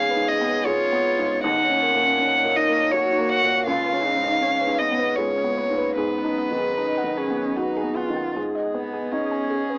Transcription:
0.00 1.40 C#2 medium
0.00 0.16 G#2 medium
0.00 1.41 B3 medium
0.00 1.47 C#4 medium
0.00 0.67 G#4 medium
0.00 1.45 G#4 medium
0.00 3.67 C#5 medium
0.00 0.30 F5 loud
0.11 0.22 B4 medium
0.16 0.56 G#2 medium
0.28 0.40 C#4 medium
0.28 0.67 D#5 loud
0.41 0.82 B3 medium
0.48 0.59 B4 medium
0.65 1.43 F4 medium
0.65 0.78 F4 medium
0.65 1.08 G#4 medium
0.65 1.43 C#5 loud
0.86 0.98 C#4 loud
0.92 1.34 B3 medium
1.06 1.17 B4 medium
1.19 1.45 G#2 medium
1.25 1.37 B4 medium
1.44 3.63 D#2 medium
1.44 3.68 A#3 medium
1.44 1.84 D#4 medium
1.44 1.56 D#4 loud
1.44 3.68 A#4 medium
1.44 2.58 F#5 loud
1.63 1.75 C#5 medium
1.69 2.09 C#4 medium
1.82 2.21 C#4 medium
1.82 1.93 A#4 medium
1.94 2.34 A#2 medium
2.01 2.12 D#4 medium
2.19 2.59 C#4 medium
2.19 2.95 D#4 medium
2.38 2.49 C#5 medium
2.44 2.84 A#2 medium
2.56 2.68 D#4 medium
2.56 2.93 D#5 loud
2.69 3.08 A#3 medium
2.75 2.86 C#5 medium
2.92 3.68 F#4 loud
2.92 3.33 F#4 medium
2.92 3.05 F#4 medium
2.92 3.31 C#5 loud
3.12 3.23 D#4 loud
3.18 3.58 A#3 medium
3.29 3.41 C#5 medium
3.29 3.66 F#5 loud
3.43 3.68 A#2 medium
3.49 3.60 C#5 medium
3.66 5.94 C#2 medium
3.66 8.36 C#4 medium
3.66 3.79 C#4 loud
3.66 4.05 F4 medium
3.66 5.99 G#4 medium
3.66 5.95 C#5 medium
3.66 4.80 F5 loud
3.86 3.97 B4 medium
3.93 4.33 C#4 medium
4.04 4.44 D#4 medium
4.04 4.16 G#4 medium
4.17 4.57 G#2 medium
4.24 4.35 C#4 medium
4.42 4.83 C#4 medium
4.42 4.82 C#4 medium
4.61 4.73 B4 medium
4.67 5.08 G#2 medium
4.79 5.21 B3 medium
4.79 4.92 C#4 loud
4.79 5.18 D#5 loud
4.92 5.34 B3 medium
4.99 5.11 B4 medium
5.16 5.60 G#3 medium
5.16 5.30 F4 medium
5.16 5.60 G#4 medium
5.16 5.96 C#5 loud
5.38 5.50 C#4 loud
5.44 5.87 B3 medium
5.58 6.00 A#3 medium
5.58 5.70 B4 medium
5.70 5.96 G#2 medium
5.78 5.90 B4 medium
5.96 8.32 G#2 medium
5.96 8.36 F#3 medium
5.96 6.70 B3 medium
5.96 6.10 G#4 loud
5.96 7.92 B4 loud
5.96 8.36 D#5 medium
6.18 6.30 F#5 medium
6.24 6.67 D#4 medium
6.38 6.50 D#5 medium
6.51 6.94 D#3 medium
6.58 6.70 G#4 loud
6.77 7.19 D#4 medium
6.77 7.20 D#4 medium
6.97 7.10 F#5 medium
7.04 7.46 D#3 medium
7.17 7.58 C#4 medium
7.17 7.29 G#4 loud
7.30 7.73 B3 medium
7.37 7.49 F#5 medium
7.56 7.98 D#4 medium
7.56 7.99 F#4 medium
7.56 7.69 B4 medium
7.77 7.89 G#4 loud
7.83 8.26 B3 soft
7.96 8.36 F4 medium
7.96 8.09 F#5 medium
8.10 8.36 D#3 medium
8.17 8.28 F#5 medium
8.36 9.78 G#2 medium
8.36 9.78 B3 medium
8.36 8.48 G#4 medium
8.36 9.78 G#4 medium
8.36 9.78 D#5 medium
8.55 8.67 D#5 medium
8.74 9.35 B3 soft
8.74 9.13 B3 medium
8.74 8.86 B4 medium
8.93 9.05 G#4 medium
9.12 9.78 C#4 medium
9.12 9.74 D#4 soft
9.12 9.24 D#5 medium
9.31 9.43 G#5 medium
9.50 9.78 G#4 medium
9.50 9.62 G#4 medium
9.70 9.78 B4 medium

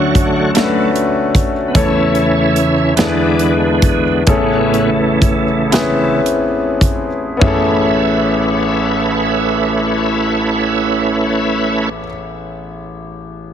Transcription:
0.00 1.71 D2 medium
0.00 0.51 D3 soft
0.00 1.71 D3 medium
0.00 0.92 F#3 medium
0.00 0.32 A3 medium
0.00 0.91 A3 medium
0.00 0.32 C#4 medium
0.00 0.32 D4 medium
0.00 0.32 F#4 medium
0.00 0.51 F#4 medium
0.00 0.33 A4 medium
0.00 0.51 C#5 soft
0.15 kick medium
0.15 closed hi-hat medium
0.54 1.52 A3 medium
0.54 1.52 C#4 medium
0.54 1.52 D4 medium
0.54 1.53 F#4 medium
0.54 0.63 A4 medium
0.54 snare medium
0.54 closed hi-hat medium
0.63 1.56 B4 medium
0.96 closed hi-hat soft
1.35 kick medium
1.35 closed hi-hat medium
1.68 1.75 B3 medium
1.75 2.94 E2 medium
1.75 2.94 C#3 medium
1.75 2.94 E3 medium
1.75 2.73 A3 medium
1.75 2.59 A3 medium
1.75 2.73 C#4 medium
1.75 2.54 C#4 soft
1.75 2.74 E4 medium
1.75 2.94 E4 medium
1.75 2.74 A4 medium
1.75 2.74 C#5 medium
1.75 kick loud
1.75 closed hi-hat medium
2.15 closed hi-hat soft
2.55 2.94 C#4 loud
2.55 closed hi-hat medium
2.96 4.24 E2 medium
2.96 4.24 D3 medium
2.96 3.53 E3 medium
2.96 4.24 E3 medium
2.96 4.24 G#3 medium
2.96 4.23 B3 medium
2.96 4.02 B3 medium
2.96 3.54 D4 medium
2.96 4.02 D4 medium
2.96 4.02 E4 medium
2.96 4.03 G#4 medium
2.96 snare medium
2.96 closed hi-hat medium
3.00 3.06 A4 medium
3.07 4.06 B4 medium
3.39 closed hi-hat soft
3.82 kick medium
3.82 closed hi-hat medium
4.27 7.38 A1 medium
4.27 4.90 A2 soft
4.27 7.38 A2 medium
4.27 6.22 C#3 medium
4.27 6.22 E3 medium
4.27 6.21 A3 medium
4.27 5.42 B3 medium
4.27 4.90 B3 soft
4.27 5.42 C#4 medium
4.27 4.90 C#4 medium
4.27 5.43 E4 medium
4.27 5.43 G#4 medium
4.27 5.43 A4 medium
4.27 kick loud
4.27 closed hi-hat medium
4.74 closed hi-hat soft
5.22 kick medium
5.22 closed hi-hat medium
5.71 7.05 B3 medium
5.71 5.80 C4 soft
5.71 7.06 E4 medium
5.71 7.06 G#4 medium
5.71 7.07 B4 medium
5.71 snare medium
5.71 closed hi-hat medium
5.78 7.09 C#4 medium
6.26 closed hi-hat soft
6.81 kick medium
6.81 closed hi-hat medium
7.37 12.00 B3 medium
7.37 12.02 C#4 medium
7.41 12.04 A1 medium
7.41 11.89 A3 medium
7.41 11.89 C#4 medium
7.41 12.05 E4 medium
7.41 11.89 E4 medium
7.41 12.06 G#4 medium
7.41 11.89 B4 medium
7.41 kick medium
7.41 floor tom medium
7.46 12.09 A4 medium

